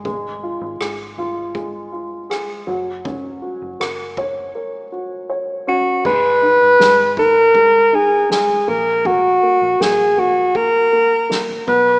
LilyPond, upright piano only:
\new Staff \with { instrumentName = "Upright piano" } { \time 4/4 \key ges \major \tempo 4 = 80 aes8 f'8 aes'8 f'8 aes8 f'8 aes'8 ges8 | des'8 ges'8 bes'8 des''8 bes'8 ges'8 des''8 des'8 | aes8 ees'8 aes8 ees'8 aes8 ees'8 aes8 bes8 | bes8 bes8 bes8 bes8 bes8 bes8 bes8 b8 | }